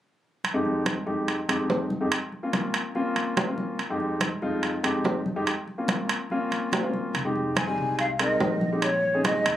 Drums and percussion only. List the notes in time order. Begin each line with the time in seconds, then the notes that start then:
0.44 high conga, high timbale
0.65 high conga
0.86 high conga, high timbale, low timbale
1.07 high conga
1.28 high conga, high timbale
1.49 high conga, high timbale
1.70 high conga, low timbale
1.90 high conga
2.12 high conga, high timbale
2.32 high conga
2.53 high conga, high timbale, low timbale
2.74 high conga, high timbale
2.95 high conga
3.16 high conga, high timbale
3.37 high conga, high timbale, low timbale
3.58 high conga
3.79 high conga, high timbale
4.00 high conga
4.21 high conga, high timbale, low timbale
4.42 high conga
4.63 high conga, high timbale
4.84 high conga, high timbale
5.05 high conga, low timbale
5.26 high conga
5.47 high conga, high timbale
5.68 high conga
5.88 high conga, high timbale, low timbale
6.09 high conga, high timbale
6.30 high conga
6.51 high conga, high timbale
6.72 high conga, high timbale, low timbale
6.94 high conga
7.14 high conga, high timbale
7.35 high conga
7.57 high conga, high timbale, low timbale
7.78 high conga
7.99 high conga, high timbale
8.19 high conga, high timbale
8.40 high conga, low timbale
8.61 high conga
8.82 high conga, high timbale
9.04 high conga
9.24 high conga, high timbale, low timbale
9.45 high conga, high timbale